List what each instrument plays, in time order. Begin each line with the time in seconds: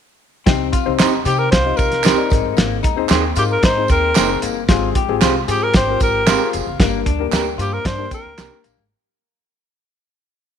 0.46 upright bass C2, upright piano C3 C4 D#4 G4 C5, clean electric guitar C4, kick, snare, closed hi-hat, tambourine
0.72 clean electric guitar F4, kick, closed hi-hat, tambourine
0.86 upright bass C2, upright piano C4 D#4 G4 C5
0.99 upright bass G1, clean electric guitar C4 D#4 G4 C5, snare, clap, closed hi-hat, tambourine
1.25 upright bass C3, upright piano C4 D#4 G4 C5, clean electric guitar G4, alto saxophone G4, closed hi-hat, tambourine
1.38 alto saxophone A#4
1.51 upright bass C2, clean electric guitar F4, alto saxophone C5, kick, snare, closed hi-hat
1.65 upright piano C4 D#4 G4 D#5
1.77 upright bass C2, alto saxophone A#4, kick, closed hi-hat, tambourine
1.92 snare, closed hi-hat
2.04 clean electric guitar C4 D#4 G4 C5, snare, clap, closed hi-hat, tambourine
2.17 upright piano C4 D#4 G4 D5
2.30 upright bass G#1, upright piano G#2 C4 D#4 G#4 A#4, kick, closed hi-hat, tambourine
2.45 upright bass G1
2.57 upright bass G#1, clean electric guitar A#3, snare, closed hi-hat, tambourine
2.83 upright bass D#2, clean electric guitar D#4, kick, closed hi-hat, tambourine
2.96 upright piano C4 D#4 G#4 C5
3.09 upright bass D#2, clean electric guitar A#3 C4 D#4 G#4 C5, snare, clap, closed hi-hat, tambourine
3.36 upright bass G#2, upright piano C4 D#4 G#4 A#4, clean electric guitar F4, alto saxophone G4, closed hi-hat, tambourine
3.52 alto saxophone A#4
3.62 upright bass G#2, clean electric guitar D#4, alto saxophone C5, kick, snare, closed hi-hat, tambourine
3.76 upright piano C4 D#4 G#4 C5
3.88 upright bass D#2, clean electric guitar C4, alto saxophone A#4, kick, closed hi-hat, tambourine
4.15 upright bass F#1, clean electric guitar A#3 C4 D#4 G#4 C5, snare, clap, closed hi-hat, tambourine
4.29 upright piano C4 D#4 G#4 A#4
4.42 upright bass G1, clean electric guitar A#3, closed hi-hat, tambourine
4.69 upright bass G#1, upright piano G#2 C4 F4 G4 G#4, clean electric guitar F4, kick, snare, closed hi-hat, tambourine
4.95 clean electric guitar G4, kick, closed hi-hat
5.09 upright bass G#1, upright piano C4 F4 G4 G#4
5.21 upright bass C2, clean electric guitar G#3 C4 F4 G4 C5, snare, clap, closed hi-hat, tambourine
5.47 upright bass G#2, upright piano C4 F4 G4 G#4, alto saxophone G4, clean electric guitar G#4, closed hi-hat, tambourine
5.63 alto saxophone A#4
5.74 upright bass G#1, clean electric guitar G4, alto saxophone C5, kick, snare, closed hi-hat, tambourine
5.87 upright piano C4 F4 G4 A#4
6.00 upright bass G#1, alto saxophone A#4, kick, closed hi-hat, tambourine
6.27 clean electric guitar G#3 C4 F4 G4 C5, snare, clap, closed hi-hat, tambourine
6.39 upright piano C4 F4 G4 G#4
6.53 upright bass F1, closed hi-hat, tambourine
6.66 upright bass F#1
6.79 upright bass G1, upright piano G2 A#3 D4 G4 A#4, clean electric guitar A#3, kick, snare, closed hi-hat, tambourine
7.06 upright bass D2, clean electric guitar D4, kick, closed hi-hat
7.19 upright piano A#3 D4 G4 A#4
7.31 upright bass D2, clean electric guitar A#3 C4 D4 G4 A#4, snare, clap, closed hi-hat, tambourine
7.58 upright bass G2, upright piano A#3 D4 G4 C5, clean electric guitar F4, alto saxophone G4, closed hi-hat, tambourine
7.73 alto saxophone A#4
7.85 upright bass G2, clean electric guitar D4, alto saxophone C5, kick, snare, closed hi-hat, tambourine
7.98 upright piano A#3 D4 G4 A#4
8.11 clean electric guitar C4, alto saxophone A#4, muted upright bass stroke, kick, closed hi-hat, tambourine
8.25 upright bass D2
8.38 upright bass C2, clean electric guitar A#3 C4 D4 G4 A#4, snare, clap, closed hi-hat, tambourine
8.51 upright piano A#3 D4 G4 A#4
8.64 upright bass A#1, clean electric guitar A#3, closed hi-hat, tambourine
8.77 upright bass G#1